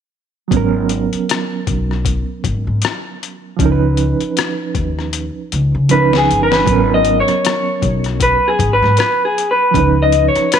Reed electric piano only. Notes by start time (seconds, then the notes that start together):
0.48 F#3 B3
0.54 C#4 A#4
3.57 F3 C#4
3.63 D#4 A#4
3.72 B4
5.89 F3 C#4 D#4
5.94 A#4
6.01 B4
6.64 F#3 B3
6.70 C#4 A#4
9.71 F3 C#4
9.77 D#4 B4